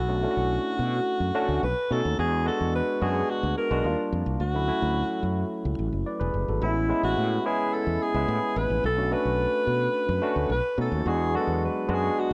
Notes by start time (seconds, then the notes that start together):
Already playing: B1 F#4
0.08 A3 C#4 D4 F#4
0.23 A3 C#4 D4 E4
0.31 F#4
0.37 B1
0.79 B2
1.20 F#2
1.35 A3 C#4 D4 F#4
1.48 D2
1.63 B1 B4
1.91 B2 A3 C#4 D#4 F#4 A4
2.05 D#2
2.18 E2 G#3 B3 D4 F#4 G#4
2.46 G#3 B3 D4 F#4 A4
2.61 E2
2.75 B4
3.01 F#2 G#3 B3 D4 F#4 G#4
3.30 F#4
3.43 D2
3.58 A#4
3.70 B1 G#3 B3 D4 F#4
3.84 D#2 G3 A#3 D4 F4
4.12 F2
4.26 C2
4.40 D2 F#4
4.54 F#3 A3 C#4 E4
4.68 F#3 A3 C#4 E4
4.82 D2
5.23 F#2
5.65 C#2
5.79 A1
5.92 F#1
6.06 B4 D5
6.20 E1 G#4 B4
6.34 F#1
6.48 G#1 F#4 A4
6.62 A1 G#3 B3 C#4 E4
6.89 G#3 B3 C#4 E4
7.03 A1 F#4
7.17 A2
7.45 G#3 B3 C#4 E4 G#4
7.74 A4
7.87 E2
8.02 G#4
8.14 C#2 G#3 B3 C#4 E4
8.28 A2
8.56 A1 B4
8.70 A1
8.84 B1 A4
8.97 A3 C#4 D4 F#4
9.11 A3 C#4 D4 F#4 B4
9.25 B1
9.67 B2
10.09 F#2
10.22 A3 C#4 D4 F#4
10.36 D2
10.50 B1 B4
10.77 B2 A3 C#4 D#4 F#4 A4
10.92 D#2
11.06 E2 G#3 B3 D4 F#4 G#4
11.34 F#3 B3 D4 F#4 A4
11.41 G#3
11.47 E2
11.65 B4
11.88 F#2 G#3 B3 D4 F#4
11.93 G#4
12.19 F#4